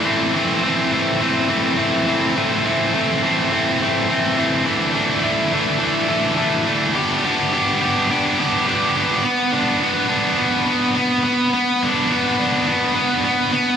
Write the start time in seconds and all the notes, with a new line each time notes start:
0.04 E3 A3 C4
0.34 E3 A3 C4
0.64 E3 A3 C4
0.92 E3 A3 C4
1.21 E3 A3 C4
1.49 E3 A3 C4
1.78 E3 A3 C4
2.08 E3 A3 C4
2.36 E3 A3 C4
2.64 E3 A3 C4
2.93 E3 A3 C4
3.23 E3 A3 C4
3.52 E3 A3 C4
3.82 E3 A3 C4
4.10 E3 A3 C4
4.37 E3 A3 C4
4.65 E3 A3 D4
4.94 E3 A3 D4
5.23 E3 A3 D4
5.52 E3 A3 D4
5.79 E3 A3 D4
6.08 E3 A3 D4
6.37 E3 A3 D4
6.66 E3 A3 D4
6.95 B3 D4 G4
7.24 B3 D4 G4
7.53 B3 D4 G4
7.82 B3 D4 G4
8.11 B3 D4 G4
8.39 B3 D4 G4
8.67 B3 D4 G4
8.95 B3 D4 G4
9.24 B3
9.52 D4
9.81 B3
10.09 D4
10.38 B3
10.66 B3
10.95 B3
11.24 B3
11.54 B3
11.83 D4
12.10 B3
12.39 D4
12.68 B3
12.96 B3
13.25 B3
13.53 B3